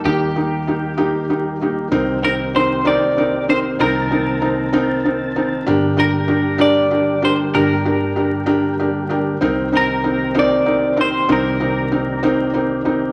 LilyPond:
<<
  \new Staff \with { instrumentName = "Clean electric guitar" } { \time 6/8 \key c \dorian \tempo 4. = 64 g'2 r4 | r8 bes'8 c''8 d''4 c''8 | bes'2 r4 | r8 bes'4 d''4 c''8 |
bes'2 r4 | r8 bes'4 d''4 c''8 | bes'2 r4 | }
  \new Staff \with { instrumentName = "Felt piano" } { \time 6/8 \key c \dorian <bes ees' g'>8 <bes ees' g'>8 <bes ees' g'>8 <bes ees' g'>8 <bes ees' g'>8 <bes ees' g'>8 | <c' ees' bes'>8 <c' ees' bes'>8 <c' ees' bes'>8 <c' ees' bes'>8 <c' ees' bes'>8 <c' ees' bes'>8 | <c' ees' bes'>8 <c' ees' bes'>8 <c' ees' bes'>8 <c' ees' bes'>8 <c' ees' bes'>8 <c' ees' bes'>8 | <d' g' bes'>8 <d' g' bes'>8 <d' g' bes'>8 <d' g' bes'>8 <d' g' bes'>8 <d' g' bes'>8 |
<d' g' bes'>8 <d' g' bes'>8 <d' g' bes'>8 <d' g' bes'>8 <d' g' bes'>8 <d' g' bes'>8 | <c' ees' bes'>8 <c' ees' bes'>8 <c' ees' bes'>8 <c' ees' bes'>8 <c' ees' bes'>8 <c' ees' bes'>8 | <c' ees' bes'>8 <c' ees' bes'>8 <c' ees' bes'>8 <c' ees' bes'>8 <c' ees' bes'>8 <c' ees' bes'>8 | }
  \new Staff \with { instrumentName = "Tonewheel organ" } { \time 6/8 \key c \dorian g'2. | g'2. | a''2. | g'2.~ |
g'2.~ | g'2.~ | g'2. | }
  \new Staff \with { instrumentName = "Tonewheel organ" } { \clef bass \time 6/8 \key c \dorian << { <g bes>2. | <bes c'>2.~ | <bes c'>2. | <g bes>2.~ |
<g bes>2. | c'2. | d'2. | } \\ { ees2. | ees2.~ | ees2. | d2.~ |
d2. | ees2.~ | ees2. | } >> }
  \new Staff \with { instrumentName = "Fingered electric bass" } { \clef bass \time 6/8 \key c \dorian ees,2. | c,2. | c,2. | g,,2. |
g,,2. | c,2. | c,2. | }
>>